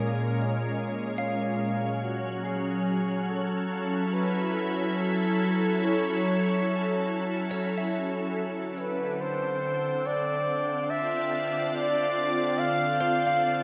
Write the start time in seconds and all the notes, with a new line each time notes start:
Already playing: A#2 G#3 C#4 A#4
1.18 F5
1.59 F#3
2.02 F#4
2.44 G#4
3.10 A4
3.30 A4
3.60 E4
4.13 B4
4.99 A4
5.85 C#5
7.51 C#5
7.78 E5
8.38 D3
8.74 C4
8.79 B4
9.21 C5
10.06 D5
10.43 F4
10.59 D5
10.90 E5
11.76 D5
12.59 F5
13.01 C5
13.27 F5